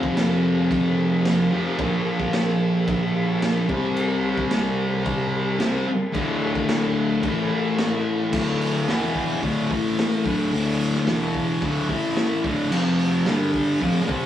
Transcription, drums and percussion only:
0.03 kick medium
0.17 snare loud
0.17 crash medium
0.71 kick loud
0.71 crash medium
1.25 snare loud
1.25 crash medium
1.79 kick loud
1.79 crash medium
2.20 kick medium
2.33 snare loud
2.33 crash medium
2.88 kick loud
2.88 crash medium
3.42 snare loud
3.42 crash medium
3.69 kick loud
3.96 crash medium
4.37 kick medium
4.51 snare loud
4.51 crash medium
5.06 kick loud
5.06 crash medium
5.60 snare loud
5.60 crash medium
6.14 kick loud
6.14 crash medium
6.55 kick medium
6.68 snare loud
6.68 crash medium
7.23 kick loud
7.23 crash medium
7.78 snare loud
7.78 crash medium
8.33 kick loud
8.33 crash loud
8.61 open hi-hat medium
8.88 snare loud
8.88 open hi-hat medium
9.15 kick medium
9.15 open hi-hat medium
9.43 kick medium
9.43 open hi-hat medium
9.71 kick medium
9.71 open hi-hat medium
9.99 snare loud
9.99 open hi-hat medium
10.26 kick loud
10.26 open hi-hat medium
10.54 open hi-hat medium
10.80 open hi-hat medium
10.94 snare soft
11.07 snare loud
11.07 open hi-hat medium
11.34 kick medium
11.34 open hi-hat medium
11.62 kick medium
11.62 open hi-hat medium
11.89 kick medium
11.89 open hi-hat medium
12.17 snare loud
12.17 open hi-hat medium
12.44 kick loud
12.44 open hi-hat medium
12.72 crash loud
12.98 open hi-hat medium
13.26 snare loud
13.26 open hi-hat medium
13.54 kick medium
13.54 open hi-hat medium
13.82 kick medium
13.82 open hi-hat medium
14.09 kick medium
14.09 open hi-hat medium
14.23 snare soft

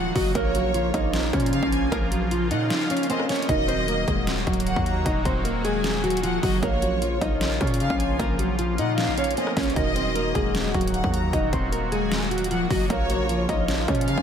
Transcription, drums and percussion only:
0.16 kick medium
0.16 open hi-hat medium
0.35 kick loud
0.35 closed hi-hat medium
0.55 closed hi-hat medium
0.74 closed hi-hat medium
0.94 kick medium
0.94 closed hi-hat medium
1.14 snare loud
1.14 closed hi-hat medium
1.33 kick loud
1.33 closed hi-hat medium
1.40 closed hi-hat medium
1.46 closed hi-hat medium
1.53 closed hi-hat medium
1.63 kick medium
1.72 closed hi-hat medium
1.92 kick loud
1.92 closed hi-hat medium
2.12 closed hi-hat medium
2.31 closed hi-hat medium
2.51 closed hi-hat medium
2.70 snare loud
2.70 closed hi-hat medium
2.90 closed hi-hat medium
2.97 closed hi-hat medium
3.03 closed hi-hat medium
3.10 closed hi-hat medium
3.20 cross-stick loud
3.29 snare medium
3.29 closed hi-hat medium
3.29 open hi-hat medium
3.36 closed hi-hat medium
3.42 closed hi-hat medium
3.49 kick loud
3.49 closed hi-hat medium
3.69 closed hi-hat medium
3.88 closed hi-hat medium
4.08 kick medium
4.08 closed hi-hat medium
4.27 snare loud
4.27 closed hi-hat medium
4.47 kick loud
4.47 closed hi-hat soft
4.53 closed hi-hat medium
4.60 closed hi-hat medium
4.67 closed hi-hat medium
4.76 kick medium
4.86 closed hi-hat medium
5.06 kick loud
5.06 closed hi-hat medium
5.25 kick loud
5.25 closed hi-hat medium
5.45 closed hi-hat medium
5.65 closed hi-hat medium
5.84 snare loud
5.84 closed hi-hat medium
6.04 closed hi-hat medium
6.10 closed hi-hat medium
6.17 closed hi-hat medium
6.23 closed hi-hat medium
6.43 kick medium
6.43 open hi-hat medium
6.63 kick loud
6.63 closed hi-hat medium
6.82 closed hi-hat medium
7.02 closed hi-hat medium
7.21 kick medium
7.21 closed hi-hat medium
7.41 snare loud
7.41 closed hi-hat medium
7.61 kick loud
7.61 closed hi-hat medium
7.67 closed hi-hat medium
7.74 closed hi-hat medium
7.80 closed hi-hat medium
7.90 kick medium
8.00 closed hi-hat medium
8.20 kick loud
8.20 closed hi-hat medium
8.39 closed hi-hat medium
8.59 closed hi-hat medium
8.78 closed hi-hat medium
8.98 snare loud
8.98 closed hi-hat medium
9.18 closed hi-hat medium
9.24 closed hi-hat medium
9.31 closed hi-hat medium
9.37 closed hi-hat medium
9.47 cross-stick loud
9.57 kick medium
9.57 snare loud
9.57 closed hi-hat medium
9.57 open hi-hat medium
9.63 closed hi-hat medium
9.70 closed hi-hat medium
9.76 kick loud
9.76 closed hi-hat medium
9.96 closed hi-hat medium
10.16 closed hi-hat medium
10.35 kick medium
10.35 closed hi-hat medium
10.55 snare loud
10.55 closed hi-hat medium
10.74 kick medium
10.74 closed hi-hat soft
10.81 closed hi-hat medium
10.87 closed hi-hat medium
10.94 closed hi-hat medium
11.04 kick medium
11.14 closed hi-hat medium
11.33 kick loud
11.33 closed hi-hat medium
11.53 kick loud
11.53 closed hi-hat medium
11.72 closed hi-hat medium
11.92 closed hi-hat medium
12.12 snare loud
12.12 closed hi-hat medium
12.31 closed hi-hat medium
12.38 closed hi-hat medium
12.44 closed hi-hat medium
12.51 closed hi-hat medium
12.70 kick medium
12.70 open hi-hat medium
12.90 kick loud
12.90 closed hi-hat medium
13.10 closed hi-hat medium
13.29 closed hi-hat medium
13.49 kick medium
13.49 closed hi-hat medium
13.68 snare loud
13.68 closed hi-hat medium
13.88 kick loud
13.88 closed hi-hat medium
13.95 closed hi-hat medium
14.01 closed hi-hat medium
14.08 closed hi-hat medium
14.18 kick medium

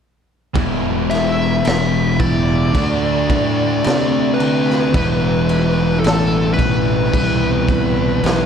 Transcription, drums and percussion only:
0.56 kick loud
0.56 crash medium
1.11 snare soft
1.11 crash medium
1.65 snare loud
1.65 crash medium
2.20 kick medium
2.20 crash medium
2.75 kick medium
2.75 crash medium
3.30 kick medium
3.30 crash medium
3.84 snare loud
3.84 crash medium
4.40 crash medium
4.70 snare soft
4.94 kick loud
4.94 crash medium
5.49 crash medium
6.04 snare loud
6.04 crash medium
6.59 kick medium
6.59 crash medium
7.14 kick medium
7.14 crash medium
7.68 kick medium
7.68 crash medium
8.24 snare loud
8.24 crash medium

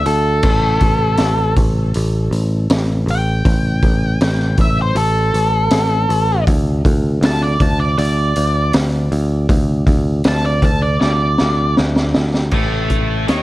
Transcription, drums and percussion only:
0.06 open hi-hat medium
0.43 kick loud
0.43 crash medium
0.81 kick medium
0.81 open hi-hat medium
1.17 snare loud
1.17 open hi-hat medium
1.56 kick medium
1.56 open hi-hat medium
1.94 open hi-hat medium
2.32 open hi-hat medium
2.70 snare loud
2.70 open hi-hat medium
3.08 open hi-hat medium
3.45 kick loud
3.45 open hi-hat medium
3.82 kick medium
3.82 open hi-hat medium
4.21 snare loud
4.21 open hi-hat medium
4.40 snare soft
4.57 kick loud
4.57 open hi-hat medium
4.96 open hi-hat medium
5.34 open hi-hat medium
5.71 snare loud
5.71 open hi-hat medium
6.10 open hi-hat medium
6.47 kick loud
6.47 open hi-hat medium
6.85 kick medium
6.85 open hi-hat medium
7.23 snare loud
7.23 open hi-hat medium
7.60 kick medium
7.60 open hi-hat medium
7.98 open hi-hat medium
8.36 open hi-hat medium
8.73 snare loud
8.73 open hi-hat medium
9.12 open hi-hat medium
9.49 kick loud
9.49 open hi-hat medium
9.87 kick medium
9.87 open hi-hat medium
10.24 snare loud
10.24 open hi-hat medium
10.62 kick medium
10.62 open hi-hat medium
11.01 snare medium
11.38 snare medium
11.77 snare medium
11.96 snare medium
12.14 snare loud
12.34 snare medium
12.51 kick medium
12.51 crash medium
12.90 kick medium
12.90 closed hi-hat medium
13.28 snare loud
13.28 closed hi-hat medium

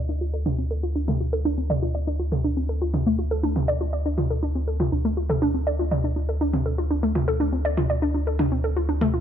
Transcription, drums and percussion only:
0.46 mid tom medium
1.08 mid tom medium
1.70 mid tom medium
2.32 mid tom medium
2.94 mid tom medium
3.56 mid tom medium
4.18 mid tom medium
4.80 mid tom medium
5.29 mid tom medium
5.91 mid tom medium
6.53 mid tom medium
7.15 mid tom medium
7.77 mid tom medium
8.39 mid tom medium
9.01 mid tom medium

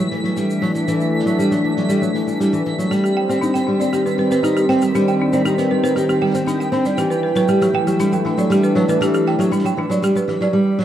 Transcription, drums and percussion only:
0.11 closed hi-hat soft
0.25 closed hi-hat soft
0.37 closed hi-hat medium
0.37 shaker medium
0.50 shaker soft
0.63 closed hi-hat medium
0.74 closed hi-hat soft
0.74 shaker medium
0.88 closed hi-hat medium
0.88 shaker medium
1.01 shaker soft
1.20 closed hi-hat soft
1.26 closed hi-hat soft
1.26 shaker medium
1.40 shaker medium
1.52 closed hi-hat medium
1.52 shaker soft
1.77 closed hi-hat medium
1.89 closed hi-hat medium
1.89 shaker medium
2.03 shaker soft
2.15 closed hi-hat soft
2.28 shaker medium
2.41 closed hi-hat medium
2.41 shaker medium
2.53 shaker soft
2.66 closed hi-hat soft
2.79 closed hi-hat soft
2.79 shaker medium
2.92 closed hi-hat medium
2.92 shaker medium
3.05 shaker soft
3.30 closed hi-hat soft
3.30 shaker medium
3.43 shaker medium
3.55 closed hi-hat medium
3.55 shaker soft
3.81 closed hi-hat soft
3.81 shaker medium
3.93 closed hi-hat medium
3.93 shaker medium
4.06 shaker soft
4.19 closed hi-hat soft
4.31 closed hi-hat soft
4.31 shaker medium
4.44 closed hi-hat medium
4.44 shaker medium
4.57 shaker soft
4.69 closed hi-hat medium
4.81 closed hi-hat soft
4.81 shaker medium
4.95 closed hi-hat medium
4.95 shaker medium
5.08 shaker soft
5.33 closed hi-hat soft
5.33 shaker medium
5.46 shaker soft
5.58 closed hi-hat medium
5.58 shaker soft
5.84 closed hi-hat soft
5.84 shaker medium
5.96 closed hi-hat medium
5.96 shaker medium
6.09 shaker soft
6.21 closed hi-hat soft
6.25 closed hi-hat soft
6.28 closed hi-hat soft
6.31 closed hi-hat soft
6.34 closed hi-hat medium
6.34 shaker medium
6.47 closed hi-hat medium
6.47 shaker medium
6.61 shaker soft
6.72 closed hi-hat medium
6.85 closed hi-hat soft
6.85 shaker medium
6.98 closed hi-hat medium
6.98 shaker medium
7.11 shaker soft
7.35 closed hi-hat soft
7.35 shaker medium
7.48 shaker medium
7.61 closed hi-hat medium
7.61 shaker soft
7.87 closed hi-hat medium
7.87 shaker medium
7.99 closed hi-hat medium
7.99 shaker medium
8.13 shaker soft
8.25 closed hi-hat soft
8.38 closed hi-hat medium
8.38 shaker medium
8.51 closed hi-hat medium
8.51 shaker medium
8.64 shaker soft
8.76 closed hi-hat medium
8.88 closed hi-hat soft
8.88 shaker medium
9.01 closed hi-hat medium
9.01 shaker medium
9.14 shaker soft
9.27 closed hi-hat soft
9.39 closed hi-hat soft
9.39 shaker medium
9.53 shaker medium
9.59 closed hi-hat medium
9.66 shaker soft
9.91 closed hi-hat medium
9.91 shaker medium
10.03 closed hi-hat medium
10.03 shaker medium
10.17 shaker soft
10.28 closed hi-hat soft
10.41 closed hi-hat medium
10.80 closed hi-hat soft

